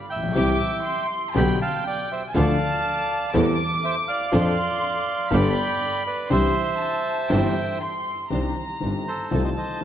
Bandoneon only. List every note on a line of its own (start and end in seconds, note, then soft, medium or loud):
0.10 1.07 E5 medium
0.10 1.06 G5 medium
1.37 1.59 G5 medium
1.37 1.59 B5 loud
1.62 1.84 F5 medium
1.62 1.84 A5 loud
1.87 2.09 D5 medium
1.87 2.11 G5 loud
2.12 2.23 C5 medium
2.12 2.22 E5 medium
2.36 3.31 D5 medium
2.36 3.31 F5 medium
3.84 3.96 C5 medium
3.84 3.95 E5 medium
4.08 5.29 D5 medium
4.08 5.36 F5 loud
5.34 6.03 D5 loud
5.34 6.03 G5 loud
6.07 6.30 B4 medium
6.07 6.30 D5 medium
6.32 7.78 C5 medium
6.32 7.78 E5 loud
9.08 9.43 A4 soft
9.08 9.43 C5 medium
9.44 9.50 C5 medium
9.44 9.50 D#5 medium
9.57 9.81 C5 medium
9.57 9.80 D#5 medium